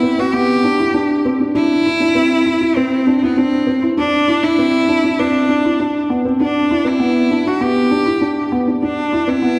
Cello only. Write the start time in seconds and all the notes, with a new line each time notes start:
Already playing: E4
0.19 F#4
0.34 G4
1.55 E4
2.76 C4
3.19 B3 C4
3.37 C4
3.98 D4
4.43 E4
5.19 D4
6.41 D4
6.87 E4
7.47 F#4
7.62 G4
8.84 D4
9.29 E4